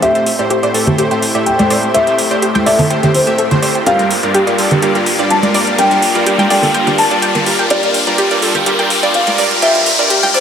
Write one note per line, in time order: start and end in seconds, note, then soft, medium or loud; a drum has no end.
0.00 0.13 A2 medium
0.00 3.82 A3 medium
0.00 0.13 A3 medium
0.00 3.82 C4 medium
0.00 3.83 E4 medium
0.00 0.13 G4 medium
0.00 0.06 G4 medium
0.00 10.40 G4 medium
0.00 0.13 C5 medium
0.00 3.83 C5 medium
0.00 0.65 E5 loud
0.00 closed hi-hat medium
0.00 riser medium
0.15 0.28 A2 medium
0.15 0.28 A3 medium
0.15 0.28 G4 medium
0.15 0.28 C5 medium
0.15 closed hi-hat soft
0.26 open hi-hat loud
0.39 0.60 A2 medium
0.39 0.60 A3 medium
0.39 0.60 G4 medium
0.39 0.60 C5 loud
0.39 0.42 D5 medium
0.39 closed hi-hat soft
0.50 0.54 G4 loud
0.50 closed hi-hat medium
0.63 0.72 A2 medium
0.63 0.72 A3 medium
0.63 0.72 G4 medium
0.63 0.72 C5 loud
0.63 0.70 D5 medium
0.63 closed hi-hat soft
0.74 0.95 A2 medium
0.74 0.95 A3 medium
0.74 0.95 G4 medium
0.74 0.95 A4 loud
0.74 open hi-hat loud
0.87 0.94 G4 medium
0.87 closed hi-hat soft
0.87 low conga medium
0.98 1.09 A2 medium
0.98 1.09 A3 medium
0.98 1.09 G4 medium
0.98 1.04 G4 medium
0.98 1.09 C5 loud
0.98 closed hi-hat medium
1.11 1.24 A2 medium
1.11 1.24 A3 medium
1.11 1.24 G4 medium
1.11 1.24 C5 medium
1.11 1.16 G5 medium
1.11 closed hi-hat soft
1.22 open hi-hat loud
1.35 1.56 A2 loud
1.35 1.56 A3 medium
1.35 1.56 G4 medium
1.35 1.38 D5 medium
1.35 1.56 E5 loud
1.46 1.90 G5 medium
1.46 closed hi-hat medium
1.59 1.69 A2 medium
1.59 1.69 A3 medium
1.59 1.69 G4 medium
1.59 1.69 C5 medium
1.59 1.66 D5 medium
1.59 closed hi-hat soft
1.59 high conga medium
1.70 1.91 A2 medium
1.70 1.91 A3 medium
1.70 1.91 G4 medium
1.70 1.91 C5 loud
1.70 1.76 D5 loud
1.70 open hi-hat loud
1.83 closed hi-hat soft
1.94 2.05 A2 medium
1.94 2.05 A3 medium
1.94 2.05 G4 medium
1.94 2.05 C5 medium
1.94 2.57 E5 loud
1.94 1.98 G5 medium
1.94 closed hi-hat medium
2.07 2.20 A2 medium
2.07 2.20 A3 medium
2.07 2.20 G4 medium
2.07 2.20 C5 medium
2.07 closed hi-hat soft
2.18 open hi-hat loud
2.31 2.52 A2 medium
2.31 2.52 A3 medium
2.31 2.52 G4 medium
2.31 2.52 C5 loud
2.31 2.34 D5 medium
2.31 closed hi-hat soft
2.42 2.50 G4 medium
2.42 closed hi-hat medium
2.55 2.64 A2 medium
2.55 2.64 A3 medium
2.55 2.64 G4 medium
2.55 2.64 C5 medium
2.55 2.62 G5 loud
2.55 closed hi-hat soft
2.55 high conga medium
2.66 2.87 A2 medium
2.66 2.87 A3 medium
2.66 2.87 G4 medium
2.66 2.87 A4 loud
2.66 2.72 D5 loud
2.66 3.10 E5 medium
2.66 open hi-hat loud
2.79 2.84 A4 medium
2.79 open hi-hat medium
2.79 low conga medium
2.90 3.01 A2 medium
2.90 3.01 A3 medium
2.90 3.01 G4 medium
2.90 3.01 C5 medium
2.90 2.94 G5 medium
2.90 closed hi-hat medium
3.03 3.16 A2 medium
3.03 3.16 A3 medium
3.03 3.08 G4 medium
3.03 3.16 G4 medium
3.03 3.16 C5 medium
3.03 closed hi-hat soft
3.03 low conga medium
3.14 3.77 C5 medium
3.14 open hi-hat loud
3.27 3.48 A2 loud
3.27 3.48 A3 medium
3.27 3.48 G4 medium
3.27 3.32 G4 medium
3.27 3.48 E5 loud
3.27 closed hi-hat soft
3.38 3.46 A4 medium
3.38 closed hi-hat medium
3.51 3.61 A2 medium
3.51 3.61 A3 medium
3.51 3.61 G4 medium
3.51 3.61 C5 medium
3.51 closed hi-hat soft
3.51 low conga loud
3.62 3.83 A3 medium
3.62 3.83 G4 medium
3.62 3.83 C5 loud
3.62 3.68 D5 medium
3.62 open hi-hat loud
3.75 3.80 G5 medium
3.75 closed hi-hat soft
3.86 3.97 G2 medium
3.86 3.97 G3 medium
3.86 10.40 A#3 medium
3.86 10.40 D4 medium
3.86 3.97 F4 medium
3.86 10.40 F4 medium
3.86 3.90 G4 medium
3.86 3.97 A#4 medium
3.86 7.67 D5 medium
3.86 4.49 F5 loud
3.86 closed hi-hat medium
3.99 4.12 G2 medium
3.99 4.12 G3 medium
3.99 4.12 F4 medium
3.99 4.12 A#4 medium
3.99 closed hi-hat soft
4.11 open hi-hat loud
4.23 4.44 G2 medium
4.23 4.44 G3 medium
4.23 4.44 F4 medium
4.23 4.44 A#4 loud
4.23 4.26 D5 medium
4.23 closed hi-hat soft
4.34 4.38 G4 loud
4.34 closed hi-hat medium
4.47 4.56 G2 medium
4.47 4.56 G3 medium
4.47 4.56 F4 medium
4.47 4.56 A#4 medium
4.47 4.54 D5 medium
4.47 closed hi-hat soft
4.58 4.79 G2 medium
4.58 4.79 G3 medium
4.58 4.79 F4 medium
4.58 4.79 A4 loud
4.58 open hi-hat loud
4.71 4.78 G4 medium
4.71 closed hi-hat soft
4.71 low conga medium
4.82 4.93 G2 medium
4.82 4.93 G3 medium
4.82 4.93 F4 medium
4.82 4.88 G4 medium
4.82 4.93 A#4 medium
4.82 closed hi-hat medium
4.95 5.08 G2 medium
4.95 5.08 G3 medium
4.95 5.08 F4 medium
4.95 5.08 A#4 medium
4.95 5.00 G5 medium
4.95 closed hi-hat soft
5.06 open hi-hat loud
5.19 5.40 G2 medium
5.19 5.40 G3 medium
5.19 5.40 F4 medium
5.19 5.22 D5 medium
5.19 5.40 D5 loud
5.19 closed hi-hat soft
5.30 5.74 A5 medium
5.30 closed hi-hat medium
5.43 5.53 G2 medium
5.43 5.53 G3 medium
5.43 5.53 F4 medium
5.43 5.53 A#4 medium
5.43 5.50 D5 medium
5.43 closed hi-hat soft
5.43 high conga medium
5.54 5.75 G2 loud
5.54 5.75 G3 medium
5.54 5.75 F4 medium
5.54 5.75 A#4 loud
5.54 5.60 D5 loud
5.54 open hi-hat loud
5.67 closed hi-hat soft
5.78 5.89 G2 medium
5.78 5.89 G3 medium
5.78 5.89 F4 medium
5.78 5.89 A#4 medium
5.78 5.82 G5 medium
5.78 6.42 G5 loud
5.78 closed hi-hat medium
5.91 6.04 G2 medium
5.91 6.04 G3 medium
5.91 6.04 F4 medium
5.91 6.04 A#4 medium
5.91 closed hi-hat soft
6.02 open hi-hat loud
6.15 6.36 G2 medium
6.15 6.36 G3 medium
6.15 6.36 F4 medium
6.15 6.36 A#4 loud
6.15 6.18 D5 medium
6.15 closed hi-hat soft
6.26 6.34 G4 medium
6.26 closed hi-hat medium
6.38 6.48 G2 medium
6.38 6.48 G3 medium
6.38 6.48 F4 medium
6.38 6.48 A#4 medium
6.38 6.46 G5 loud
6.38 closed hi-hat soft
6.38 high conga medium
6.50 6.71 G2 medium
6.50 6.71 G3 medium
6.50 6.71 F4 medium
6.50 6.71 A4 loud
6.50 6.56 D5 loud
6.50 6.94 G5 medium
6.50 open hi-hat loud
6.62 6.68 A4 medium
6.62 open hi-hat medium
6.62 low conga medium
6.74 6.85 G2 medium
6.74 6.85 G3 medium
6.74 6.85 F4 medium
6.74 6.85 A#4 medium
6.74 6.78 G5 medium
6.74 closed hi-hat medium
6.87 7.00 G2 medium
6.87 7.00 G3 medium
6.87 7.00 F4 medium
6.87 6.92 G4 medium
6.87 7.00 A#4 loud
6.87 closed hi-hat soft
6.87 low conga medium
6.98 7.61 A5 loud
6.98 open hi-hat loud
7.11 7.32 G2 medium
7.11 7.32 G3 medium
7.11 7.32 F4 medium
7.11 7.14 D5 medium
7.11 7.32 D5 loud
7.11 closed hi-hat soft
7.22 7.28 G5 medium
7.22 closed hi-hat medium
7.35 7.45 G2 medium
7.35 7.45 G3 medium
7.35 7.45 F4 medium
7.35 7.45 A#4 medium
7.35 closed hi-hat soft
7.35 low conga loud
7.46 7.67 G2 medium
7.46 7.67 G3 medium
7.46 7.67 F4 medium
7.46 7.67 A#4 loud
7.46 open hi-hat loud
7.59 7.62 G5 medium
7.59 closed hi-hat soft
7.70 7.81 G2 medium
7.70 7.81 G3 medium
7.70 7.81 F4 medium
7.70 7.74 G4 medium
7.70 7.81 A#4 medium
7.70 10.40 D5 loud
7.70 8.33 D5 loud
7.70 closed hi-hat medium
7.83 7.96 G2 medium
7.83 7.96 G3 medium
7.83 7.96 F4 medium
7.83 7.96 A#4 medium
7.83 closed hi-hat soft
7.94 open hi-hat loud
8.07 8.28 G2 medium
8.07 8.28 G3 medium
8.07 8.28 F4 medium
8.07 8.28 A#4 loud
8.07 8.10 D5 medium
8.07 closed hi-hat soft
8.18 8.21 G4 loud
8.18 closed hi-hat medium
8.31 8.40 G2 medium
8.31 8.40 G3 medium
8.31 8.40 F4 medium
8.31 8.40 A#4 medium
8.31 8.38 D5 medium
8.31 closed hi-hat soft
8.42 8.63 G2 medium
8.42 8.63 G3 medium
8.42 8.63 F4 medium
8.42 8.63 A4 loud
8.42 open hi-hat loud
8.55 8.62 G4 medium
8.55 closed hi-hat soft
8.55 low conga medium
8.66 8.77 G2 medium
8.66 8.77 G3 medium
8.66 8.77 F4 medium
8.66 8.72 G4 medium
8.66 8.77 A#4 loud
8.66 closed hi-hat loud
8.79 8.92 G2 medium
8.79 8.92 G3 medium
8.79 8.92 F4 medium
8.79 8.92 A#4 loud
8.79 8.84 G5 medium
8.79 closed hi-hat soft
8.90 open hi-hat loud
9.03 9.24 G2 medium
9.03 9.24 G3 medium
9.03 9.24 F4 medium
9.03 9.06 D5 medium
9.03 9.24 D5 loud
9.03 closed hi-hat soft
9.14 9.58 F5 medium
9.14 closed hi-hat medium
9.27 9.37 G2 medium
9.27 9.37 G3 medium
9.27 9.37 F4 medium
9.27 9.37 A#4 medium
9.27 9.34 D5 medium
9.27 closed hi-hat soft
9.27 high conga medium
9.38 9.59 G2 medium
9.38 9.59 G3 medium
9.38 9.59 F4 medium
9.38 9.59 A#4 loud
9.38 9.44 D5 loud
9.38 open hi-hat loud
9.51 closed hi-hat soft
9.62 9.73 G2 medium
9.62 9.73 G3 medium
9.62 9.73 F4 medium
9.62 9.73 A#4 medium
9.62 10.25 E5 loud
9.62 9.65 G5 medium
9.62 closed hi-hat medium
9.75 9.88 G2 medium
9.75 9.88 G3 medium
9.75 9.88 F4 medium
9.75 9.88 A#4 medium
9.75 closed hi-hat soft
9.86 open hi-hat loud
9.99 10.20 G2 medium
9.99 10.20 G3 medium
9.99 10.20 F4 medium
9.99 10.20 A#4 loud
9.99 10.02 D5 medium
9.99 closed hi-hat soft
10.10 10.18 G4 medium
10.10 closed hi-hat loud
10.23 10.32 G2 medium
10.23 10.32 G3 medium
10.23 10.32 F4 medium
10.23 10.32 A#4 medium
10.23 10.30 G5 loud
10.23 closed hi-hat soft
10.23 high conga medium
10.34 10.40 G2 medium
10.34 10.40 G3 medium
10.34 10.40 F4 medium
10.34 10.40 A4 loud
10.34 10.40 C5 loud
10.34 10.40 D5 loud
10.34 open hi-hat loud